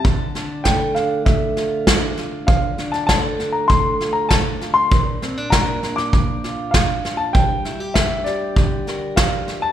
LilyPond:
<<
  \new Staff \with { instrumentName = "Upright piano" } { \time 4/4 \key d \minor \tempo 4 = 99 a''4 g''8 f''8 e''4. r8 | f''8. a''16 a''8. bes''16 c'''8. bes''16 a''8. c'''16~ | c'''4 bes''8. d'''4~ d'''16 f''8. a''16 | g''4 e''8 d''4. f''8. a''16 | }
  \new Staff \with { instrumentName = "Steel-string acoustic guitar" } { \time 4/4 \key d \minor << { r8 d'4 d'4 f'8 d'8 f'8 | r8 d'4 d'4 f'8 d'8 f'8 | r8 c'16 d'8. d'4 f'8 d'8 f'8 | r8 e'16 g'8. g'4 bes'4. | } \\ { d4 a4 a,2 | d4 a4 a,2 | bes,4 bes4 f2 | g4 d'4 d4 f8 e8 | } >> }
  \new DrumStaff \with { instrumentName = "Drums" } \drummode { \time 4/4 <bd sn>8 sn8 <bd sn>8 sn8 <bd sn>8 sn8 <bd sn>8 sn8 | <bd sn>8 sn16 sn16 <bd sn>8 sn8 <bd sn>8 sn8 <bd sn>8 sn8 | <bd sn>8 sn8 <bd sn>8 sn16 sn16 <bd sn>8 sn8 <bd sn>8 sn8 | <bd sn>8 sn8 <bd sn>8 sn8 <bd sn>8 sn8 <bd sn>8 sn8 | }
>>